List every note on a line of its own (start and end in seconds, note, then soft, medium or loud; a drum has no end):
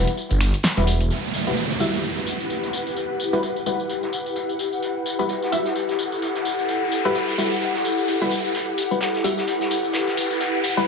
0.00 0.15 G3 medium
0.00 0.15 E4 medium
0.00 0.15 F#4 medium
0.00 0.15 B4 medium
0.07 closed hi-hat medium
0.07 tambourine soft
0.17 tambourine soft
0.31 0.52 G1 loud
0.31 closed hi-hat medium
0.31 tambourine soft
0.40 finger snap medium
0.40 closed hi-hat medium
0.40 open hi-hat loud
0.40 tambourine medium
0.54 closed hi-hat medium
0.54 tambourine soft
0.63 snare loud
0.63 closed hi-hat medium
0.63 tambourine soft
0.77 1.09 E1 medium
0.77 0.88 G3 medium
0.77 0.88 E4 medium
0.77 0.88 F#4 medium
0.77 0.88 B4 medium
0.77 closed hi-hat medium
0.77 tambourine soft
0.87 closed hi-hat medium
0.87 open hi-hat loud
0.87 tambourine medium
1.00 closed hi-hat medium
1.00 tambourine soft
1.10 10.88 E4 medium
1.10 closed hi-hat medium
1.10 tambourine soft
1.10 downlifter medium
1.28 10.88 G4 medium
1.33 5.63 B4 medium
1.33 closed hi-hat medium
1.33 tambourine medium
1.47 1.67 G3 medium
1.47 1.67 E4 medium
1.47 1.67 F#4 medium
1.47 1.67 B4 medium
1.47 tambourine soft
1.52 10.88 F#5 medium
1.56 closed hi-hat medium
1.56 tambourine soft
1.70 snare medium
1.70 tambourine soft
1.80 2.01 G3 medium
1.80 2.01 E4 medium
1.80 2.01 F#4 medium
1.80 2.01 E5 medium
1.80 tambourine medium
1.93 snare soft
1.93 tambourine soft
2.03 closed hi-hat medium
2.03 tambourine soft
2.16 snare soft
2.16 tambourine soft
2.27 closed hi-hat medium
2.27 tambourine medium
2.40 tambourine soft
2.50 closed hi-hat medium
2.50 tambourine soft
2.63 snare medium
2.63 tambourine soft
2.73 closed hi-hat medium
2.73 tambourine medium
2.87 tambourine soft
2.96 closed hi-hat medium
2.96 tambourine soft
3.20 closed hi-hat medium
3.20 tambourine medium
3.33 3.64 G3 medium
3.33 3.64 E4 medium
3.33 3.64 F#4 medium
3.33 3.64 B4 loud
3.33 tambourine soft
3.42 closed hi-hat medium
3.42 tambourine soft
3.56 tambourine soft
3.66 3.87 G3 medium
3.66 3.87 E4 medium
3.66 3.87 F#4 medium
3.66 3.87 B4 medium
3.66 closed hi-hat medium
3.66 tambourine medium
3.80 tambourine soft
3.89 closed hi-hat medium
3.89 tambourine soft
4.03 snare soft
4.03 tambourine soft
4.12 closed hi-hat medium
4.12 tambourine medium
4.26 tambourine soft
4.36 closed hi-hat medium
4.36 tambourine soft
4.49 tambourine soft
4.59 closed hi-hat medium
4.59 tambourine medium
4.73 tambourine soft
4.82 closed hi-hat medium
4.82 tambourine soft
4.82 riser medium
5.06 closed hi-hat medium
5.06 tambourine medium
5.19 5.39 G3 medium
5.19 5.39 E4 medium
5.19 5.39 F#4 medium
5.19 5.39 B4 medium
5.19 tambourine soft
5.29 closed hi-hat medium
5.29 tambourine soft
5.42 snare medium
5.42 tambourine soft
5.48 5.73 G3 medium
5.48 5.73 E4 medium
5.48 5.73 F#4 medium
5.48 9.69 A4 medium
5.48 5.73 E5 medium
5.48 tambourine medium
5.53 closed hi-hat medium
5.65 snare soft
5.65 tambourine soft
5.76 closed hi-hat medium
5.76 tambourine soft
5.89 snare soft
5.89 tambourine soft
5.98 closed hi-hat medium
5.98 tambourine medium
6.12 tambourine soft
6.22 closed hi-hat medium
6.22 tambourine soft
6.35 snare soft
6.35 tambourine soft
6.45 closed hi-hat medium
6.45 tambourine medium
6.59 tambourine soft
6.68 closed hi-hat medium
6.68 tambourine soft
6.92 closed hi-hat medium
6.92 tambourine medium
7.05 7.36 G3 medium
7.05 7.36 E4 medium
7.05 7.36 F#4 medium
7.05 7.36 B4 loud
7.05 tambourine soft
7.15 closed hi-hat medium
7.15 tambourine soft
7.28 tambourine soft
7.38 7.59 G3 medium
7.38 7.59 E4 medium
7.38 7.59 F#4 medium
7.38 7.59 B4 medium
7.38 closed hi-hat medium
7.38 tambourine medium
7.52 tambourine soft
7.62 closed hi-hat medium
7.62 tambourine soft
7.75 snare medium
7.75 tambourine soft
7.85 closed hi-hat medium
7.85 tambourine medium
7.98 tambourine soft
8.08 closed hi-hat medium
8.08 tambourine soft
8.21 8.32 G3 medium
8.21 8.32 E4 medium
8.21 8.32 F#4 medium
8.21 8.32 B4 medium
8.21 tambourine soft
8.31 closed hi-hat medium
8.31 tambourine medium
8.45 tambourine soft
8.54 closed hi-hat medium
8.54 tambourine soft
8.54 riser medium
8.77 10.88 B4 medium
8.77 closed hi-hat medium
8.77 open hi-hat loud
8.77 tambourine medium
8.91 9.11 G3 medium
8.91 9.11 E4 medium
8.91 9.11 F#4 medium
8.91 9.11 B4 medium
8.91 tambourine soft
9.01 snare loud
9.01 closed hi-hat medium
9.01 tambourine soft
9.14 snare medium
9.14 tambourine soft
9.24 9.45 G3 medium
9.24 9.45 E4 medium
9.24 9.45 F#4 medium
9.24 9.45 E5 medium
9.24 closed hi-hat medium
9.24 open hi-hat loud
9.24 tambourine medium
9.37 snare soft
9.37 tambourine soft
9.47 closed hi-hat medium
9.47 tambourine soft
9.61 snare soft
9.61 tambourine soft
9.70 closed hi-hat medium
9.70 open hi-hat loud
9.70 tambourine medium
9.84 tambourine soft
9.93 snare loud
9.93 closed hi-hat medium
9.93 tambourine soft
10.07 snare medium
10.07 tambourine soft
10.17 closed hi-hat medium
10.17 open hi-hat loud
10.17 tambourine medium
10.31 tambourine soft
10.40 closed hi-hat medium
10.40 tambourine soft
10.64 closed hi-hat medium
10.64 open hi-hat loud
10.64 tambourine medium
10.77 10.88 G3 loud
10.77 10.88 E4 medium
10.77 10.88 F#4 medium
10.77 10.88 B4 loud
10.77 tambourine soft